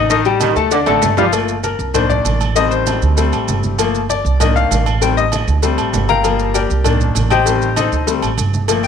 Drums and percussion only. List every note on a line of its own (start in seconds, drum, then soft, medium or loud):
0.10 cowbell loud
0.10 high conga soft
0.10 low agogo medium
0.10 maracas medium
0.25 high conga soft
0.25 maracas soft
0.40 cowbell medium
0.40 high conga medium
0.40 low agogo loud
0.40 maracas medium
0.56 maracas soft
0.71 cowbell loud
0.71 high bongo medium
0.71 high conga soft
0.71 low agogo medium
0.71 maracas medium
0.86 cowbell medium
0.86 high bongo medium
0.86 high conga soft
0.86 high timbale loud
0.86 low agogo loud
0.86 maracas soft
1.02 cowbell medium
1.02 high conga medium
1.02 low timbale loud
1.02 low agogo medium
1.02 maracas medium
1.17 low bongo loud
1.17 high conga medium
1.17 low timbale loud
1.17 maracas soft
1.33 cowbell loud
1.33 high conga soft
1.33 low agogo loud
1.33 maracas medium
1.48 cowbell medium
1.48 high conga soft
1.48 maracas soft
1.64 cowbell medium
1.64 high conga medium
1.64 low agogo medium
1.64 maracas medium
1.79 high conga soft
1.79 maracas soft
1.94 cowbell loud
1.94 high conga soft
1.94 low conga medium
1.94 low agogo loud
1.94 maracas medium
2.10 high conga soft
2.10 low conga medium
2.10 maracas soft
2.25 cowbell medium
2.25 high conga medium
2.25 low agogo medium
2.25 maracas medium
2.41 high conga medium
2.41 low agogo loud
2.41 maracas soft
2.56 cowbell loud
2.56 high conga soft
2.56 low agogo medium
2.56 maracas medium
2.71 high conga soft
2.71 maracas soft
2.87 cowbell medium
2.87 high conga medium
2.87 low agogo loud
2.87 maracas medium
3.02 maracas soft
3.17 cowbell loud
3.17 high conga soft
3.17 low agogo medium
3.17 maracas medium
3.33 cowbell medium
3.33 high conga soft
3.33 low agogo loud
3.33 maracas soft
3.48 cowbell medium
3.48 high conga medium
3.48 low agogo medium
3.48 maracas medium
3.63 high conga medium
3.63 maracas soft
3.79 cowbell loud
3.79 high conga soft
3.79 low agogo loud
3.79 maracas medium
3.95 cowbell medium
3.95 high conga soft
3.95 maracas soft
4.09 cowbell medium
4.09 high conga medium
4.09 low agogo medium
4.09 maracas medium
4.26 high conga soft
4.26 maracas soft
4.40 cowbell loud
4.40 high conga soft
4.40 low conga medium
4.40 low agogo loud
4.40 maracas medium
4.57 high conga soft
4.57 maracas soft
4.71 cowbell medium
4.71 high conga medium
4.71 low timbale medium
4.71 low agogo medium
4.71 maracas medium
4.86 low agogo loud
4.86 maracas soft
5.01 cowbell loud
5.01 high conga soft
5.01 low agogo medium
5.01 maracas medium
5.18 high conga soft
5.18 maracas soft
5.32 cowbell medium
5.32 high conga medium
5.32 low agogo loud
5.32 maracas medium
5.48 maracas soft
5.63 cowbell loud
5.63 high conga soft
5.63 low agogo medium
5.63 maracas medium
5.78 cowbell medium
5.78 high conga soft
5.78 low agogo loud
5.78 maracas soft
5.93 cowbell medium
5.93 high conga medium
5.93 low timbale medium
5.93 low agogo medium
5.93 maracas medium
6.09 high conga medium
6.09 maracas soft
6.24 cowbell loud
6.24 high conga soft
6.24 low agogo loud
6.24 maracas medium
6.39 cowbell medium
6.39 high conga soft
6.39 maracas soft
6.54 cowbell medium
6.54 high conga medium
6.54 low agogo medium
6.54 maracas medium
6.70 high conga soft
6.70 maracas soft
6.84 cowbell loud
6.84 high conga soft
6.84 low conga medium
6.84 low agogo loud
6.84 maracas medium
7.01 high conga soft
7.01 low conga medium
7.01 maracas soft
7.15 cowbell medium
7.15 high conga medium
7.15 low agogo medium
7.15 maracas medium
7.30 high conga medium
7.30 low agogo loud
7.30 maracas soft
7.46 cowbell loud
7.46 high conga soft
7.46 low agogo medium
7.46 maracas medium
7.62 high conga soft
7.62 maracas soft
7.76 cowbell medium
7.76 high conga medium
7.76 low agogo loud
7.76 maracas medium
7.92 maracas soft
8.07 cowbell loud
8.07 high conga soft
8.07 low agogo medium
8.07 maracas medium
8.22 cowbell medium
8.22 high conga soft
8.22 low agogo loud
8.22 maracas soft
8.38 cowbell medium
8.38 high conga medium
8.38 low agogo medium
8.38 maracas medium
8.54 high conga medium
8.54 maracas soft
8.68 cowbell loud
8.68 high conga soft
8.68 low agogo loud
8.68 maracas medium
8.83 cowbell medium
8.83 maracas soft